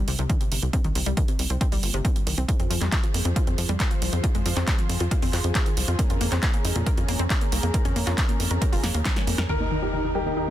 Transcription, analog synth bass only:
0.08 0.16 C2 medium
0.19 0.27 C2 medium
0.52 0.59 G1 medium
0.62 0.70 C2 medium
0.84 0.92 C2 medium
0.95 1.03 C2 medium
1.06 1.14 C2 medium
1.39 1.47 C2 medium
1.50 1.58 C2 medium
1.72 1.80 C2 medium
1.83 1.91 G1 medium
1.94 2.02 G1 medium
2.27 2.34 C2 medium
2.37 2.45 C2 medium
2.59 2.67 F2 medium
2.70 2.78 F2 medium
2.81 2.89 F2 medium
3.14 3.22 F2 medium
3.25 3.33 F2 medium
3.47 3.55 F2 medium
3.58 3.66 F2 medium
3.69 3.77 F2 medium
4.02 4.10 C2 medium
4.13 4.21 F2 medium
4.35 4.42 F2 medium
4.46 4.53 F2 medium
4.56 4.64 F2 medium
4.89 4.97 F2 medium
5.00 5.08 F2 medium
5.22 5.30 F2 medium
5.33 5.41 F2 medium
5.44 5.52 F2 medium
5.77 5.85 C2 medium
5.88 5.96 F2 medium
6.10 6.18 F2 medium
6.21 6.29 F2 medium
6.32 6.40 F2 medium
6.65 6.72 F2 medium
6.76 6.83 F2 medium
6.97 7.05 F2 medium
7.08 7.16 F2 medium
7.19 7.27 F2 medium
7.52 7.60 C2 medium
7.63 7.71 F2 medium
7.85 7.93 F2 medium
7.96 8.04 F2 medium
8.07 8.15 F2 medium
8.40 8.48 F2 medium
8.51 8.59 F2 medium
8.73 8.80 F1 medium
8.83 8.91 F2 medium
8.94 9.02 D#2 medium
9.27 9.35 F2 medium
9.38 9.46 F2 medium
9.49 10.50 D#2 medium

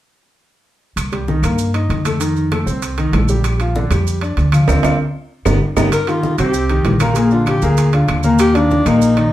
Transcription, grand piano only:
1.12 1.25 G3 medium
1.12 1.25 G4 medium
1.28 1.41 D#3 medium
1.28 1.41 D#4 medium
1.43 1.69 A#3 medium
1.43 1.69 A#4 medium
1.74 2.00 D#4 medium
1.74 2.00 D#5 medium
2.05 2.18 A3 medium
2.05 2.18 A4 medium
2.20 2.46 D#3 medium
2.20 2.46 D#4 medium
2.52 2.64 A3 medium
2.52 2.64 A4 medium
2.66 2.92 C4 medium
2.66 2.92 C5 medium
2.98 3.11 D#3 medium
2.98 3.11 D#4 medium
3.14 3.26 A3 medium
3.14 3.26 A4 medium
3.29 3.55 G3 medium
3.29 3.55 G4 medium
3.60 3.73 F3 medium
3.60 3.73 F4 medium
3.76 3.88 D3 medium
3.76 3.89 D4 medium
3.91 4.16 G3 medium
3.91 4.17 G4 medium
4.22 4.47 D4 medium
4.22 4.48 D5 medium
4.53 4.66 F3 medium
4.53 4.66 F4 medium
4.69 4.79 C4 medium
4.69 4.79 D4 medium
4.69 4.79 F4 medium
4.84 4.94 C4 medium
4.84 4.94 D4 medium
4.84 4.94 F4 medium
5.46 5.56 G3 medium
5.46 5.56 B3 medium
5.46 5.56 D#4 medium
5.77 5.87 G3 medium
5.77 5.87 B3 medium
5.77 5.87 D#4 medium
6.08 6.33 D#3 medium
6.08 6.33 D#4 medium
6.08 6.34 G4 medium
6.39 6.64 C3 medium
6.39 6.64 C4 medium
6.39 6.65 C5 medium
6.70 6.95 D#3 medium
6.70 6.95 D#4 medium
6.70 6.96 G4 medium
7.01 7.13 A#2 medium
7.01 7.14 A#3 medium
7.01 7.14 A#4 medium
7.16 7.29 A#2 medium
7.16 7.29 A#3 medium
7.16 7.29 A#4 medium
7.32 7.57 D3 medium
7.32 7.57 D4 medium
7.32 7.58 F4 medium
7.62 7.88 A#2 medium
7.62 7.88 A#3 medium
7.62 7.88 A#4 medium
7.93 8.19 D3 medium
7.93 8.19 D4 medium
7.93 8.19 F4 medium
8.24 8.50 A#2 medium
8.24 8.50 A#3 medium
8.24 8.50 A#4 medium
8.54 8.80 D#3 medium
8.54 8.80 D4 medium
8.54 8.81 F4 medium
8.86 9.11 A#2 medium
8.86 9.12 A#3 medium
8.86 9.12 A#4 medium
9.17 9.33 D#3 medium
9.17 9.33 D#4 medium
9.17 9.33 D5 medium

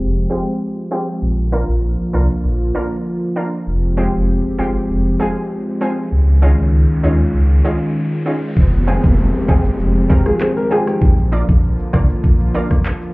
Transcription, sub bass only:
0.00 0.27 F1 loud
1.22 1.64 A#1 loud
1.69 1.96 A#1 loud
2.14 2.28 C2 medium
2.44 2.72 A#1 loud
3.67 4.09 F1 loud
4.14 4.41 F1 medium
4.59 4.73 G1 medium
4.89 5.17 F1 loud
6.12 6.54 C#2 loud
6.59 6.86 C#2 medium
7.04 7.18 D#2 medium
7.34 7.62 C#2 medium
8.57 8.99 F1 loud
9.04 9.31 F1 loud
9.49 9.63 G1 loud
9.79 10.07 F1 loud
11.02 11.44 A#1 loud
11.49 11.76 A#1 loud
11.94 12.08 C2 medium
12.24 12.51 A#1 loud

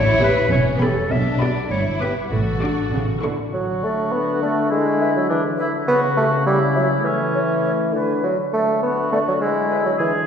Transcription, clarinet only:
0.00 0.22 C#5 medium
0.24 0.52 B4 medium
0.52 0.65 C#5 medium
0.82 1.13 A4 medium
1.11 1.42 E5 loud
1.41 1.70 D5 medium
1.71 1.84 C#5 medium
2.00 2.14 B4 medium
2.31 3.20 A4 medium
3.82 3.93 A4 soft
4.41 4.51 A4 soft
5.01 5.11 B4 soft
5.58 5.68 B4 soft
6.16 6.26 G4 soft
6.74 6.84 G4 soft
7.34 7.45 A4 soft
7.94 8.05 A4 soft
8.52 8.62 A4 soft
9.12 9.22 A4 soft
9.71 9.81 B4 soft

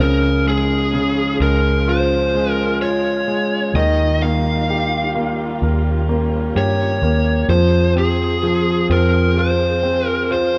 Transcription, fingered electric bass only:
0.00 1.35 C#2 medium
1.40 3.23 C#2 medium
3.74 5.57 D#2 medium
5.62 6.51 D#2 medium
6.56 6.99 G2 medium
7.02 7.45 D#2 medium
7.49 8.85 F2 medium
8.90 10.58 F2 medium

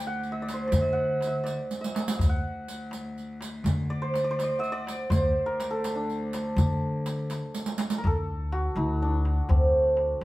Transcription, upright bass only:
0.72 1.57 D3 loud
2.19 2.40 D2 medium
3.64 4.49 D3 loud
5.10 5.32 D2 loud
6.56 7.41 D3 loud
8.04 8.67 D2 loud
8.76 9.39 D2 medium
9.49 10.12 D2 loud

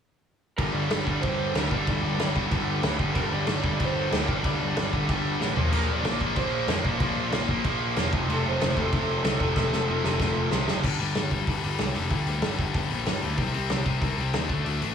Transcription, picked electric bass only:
0.58 0.72 G1 medium
0.73 0.88 G1 medium
0.90 1.05 G1 loud
1.06 1.21 G1 medium
1.24 1.52 G1 loud
1.54 1.69 D2 medium
1.71 1.85 G1 medium
1.88 2.01 G1 medium
2.02 2.17 G1 medium
2.18 2.33 G1 loud
2.36 2.50 G1 medium
2.51 2.79 G1 loud
2.83 2.97 D2 medium
2.99 3.14 G1 medium
3.15 3.30 G1 medium
3.32 3.46 G1 medium
3.47 3.62 G1 medium
3.64 3.78 G1 medium
3.80 4.08 G1 medium
4.12 4.26 D2 loud
4.28 4.42 G1 medium
4.44 4.58 G1 medium
4.60 4.74 G1 medium
4.77 4.91 G1 medium
4.93 5.07 G1 medium
5.08 5.36 G1 loud
5.40 5.54 A1 medium
5.55 5.70 A#1 medium
5.72 5.86 A#1 medium
5.88 6.02 A#1 medium
6.03 6.18 A#1 loud
6.21 6.35 A#1 medium
6.36 6.64 A#1 loud
6.67 6.82 F2 medium
6.85 6.99 A#1 medium
7.00 7.14 A#1 medium
7.16 7.30 A#1 medium
7.32 7.46 A#1 loud
7.48 7.62 A#1 medium
7.64 7.92 A#1 loud
7.97 8.11 E1 medium
8.13 8.27 F1 medium
8.29 8.43 F1 medium
8.45 8.59 F1 medium
8.61 8.75 F1 loud
8.77 8.91 F1 medium
8.93 9.20 F1 loud
9.23 9.37 C2 medium
9.40 9.54 F1 medium
9.56 9.70 F1 medium
9.72 9.86 F1 medium
9.88 10.02 F1 medium
10.04 10.18 F1 medium
10.19 10.47 F1 medium
10.51 10.65 C2 medium
10.68 10.82 F#1 medium
10.84 10.99 G1 medium
11.01 11.15 G1 medium
11.15 11.30 G1 loud
11.31 11.46 G1 medium
11.47 11.62 G1 medium
11.64 11.79 G1 medium
11.81 11.95 C2 medium
11.96 12.10 F1 medium
12.11 12.26 G1 loud
12.27 12.41 D2 medium
12.41 12.57 G1 loud
12.59 12.74 G1 medium
12.74 12.89 G1 medium
12.90 13.05 A#1 medium
13.06 13.21 G1 medium
13.22 13.40 D2 medium
13.38 13.53 C2 medium
13.55 13.70 C2 medium
13.70 13.85 C2 loud
13.86 14.01 C2 medium
14.01 14.17 C2 loud
14.18 14.33 C2 medium
14.35 14.48 D#2 medium
14.49 14.64 D2 medium
14.65 14.80 D2 medium
14.81 14.95 A1 medium

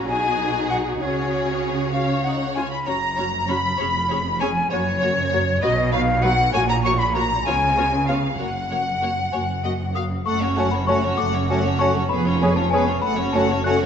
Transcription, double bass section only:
0.08 1.01 B1 medium
1.01 2.63 C#2 medium
2.87 3.69 F#1 medium
3.79 4.61 F1 medium
4.72 5.53 F#1 medium
5.63 6.44 B1 medium
6.55 7.36 A#1 medium
7.47 8.29 C#2 medium
8.40 9.22 F#1 medium
9.33 10.16 F#1 medium
10.27 11.08 F#1 medium
11.19 12.01 F#1 medium
12.11 12.93 F1 medium
13.04 13.85 F#1 medium

